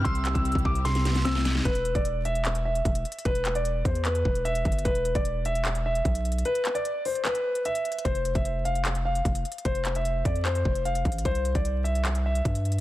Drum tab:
HH |x--x--x--x--x-x-x----x--x--x--x--x--x-----x-----|x--x--x--x--x-----x--x--x--x-----x--x--x--x-x-x-|x--x--x--x--x-----x--x--x--x-----x--x--x--x-x-x-|x--x--x--x--x-----x--x--x--x-----x--x--x--x-x-x-|
CP |------x-----------------------------------------|------------------------x-----------------------|------x-----------------x-----------------------|------------------------x-----------------------|
SD |------------------------o--o--o--o--o--o--o--o--|------------------------------------------------|------------------------------------------------|------------------------------------------------|
BD |o--------o-----o--o-----------------------------|o--------o--------------------------o-----------|o-----------------o-----------o-----------o-----|o--------o--------------------------o-----------|

HH |x--x--x--x--x-----o--x--x--x-----x--x--x--x-x-x-|x--x--x--x--x-----x--x--x--x-----x--x--x--x-x-x-|x--x--x--x--x-----x--x--x--x-----x--x--x--x-x-x-|x--x--x--x--x-----x--x--x--x-----x--x--x--x-x---|
CP |------x-----------------x-----------------------|------------------------x-----------------------|------x-----------------x-----------------------|------------------------x-----------------------|
SD |------------------------------------------------|------------------------------------------------|------------------------------------------------|------------------------------------------------|
BD |------------------------------------------------|o--------o--------------------------o-----------|o-----------------o-----------o-----------o-----|o--------o--------------------------o-----------|